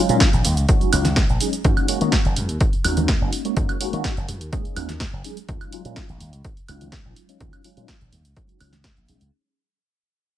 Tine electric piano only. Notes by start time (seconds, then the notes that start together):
0.09 F#3 G#3 C#4 D#4 F4
0.69 F#3 G#3 C#4 D#4 F#4
0.93 F#3 G#3 C#4 D#4 F4
1.41 F#3 G#3 C#4 D#4 G#4
1.64 G#3 A#3 C#4 D#4 F#4
1.88 G#3 A#3 C#4 D#4 F#4
2.01 G#3 A#3 C#4 D#4 F#4
2.84 G#3 A#3 C#4 D#4 F#4
3.45 G#3 A#3 C#4 D#4 F#4
3.56 G#3 A#3 C#4 D#4 F#4
3.80 G#3 A#3 C#4 D#4 F#4
3.93 G#3 A#3 C#4 D#4 F#4
4.52 G#3 A#3 C#4 D#4 G#4
4.76 G#3 A#3 C#4 D#4 F#4
5.24 F#3 G#3 C#4 D#4 G#4
5.48 F#3 G#3 C#4 D#4 F4
5.72 F#3 G#3 C#4 D#4 F4
5.85 F#3 G#3 C#4 D#4 F4
6.68 F#3 G#3 C#4 D#4 F4
7.29 F#3 G#3 C#4 D#4 F4
7.40 F#3 G#3 C#4 D#4 F4
7.64 F#3 G#3 C#4 D#4 F4
7.77 F#3 G#3 C#4 D#4 F4
8.36 F#3 G#3 C#4 D#4 F#4
8.60 F#3 G#3 C#4 D#4 F4
9.08 F#3 G#3 C#4 D#4 G#4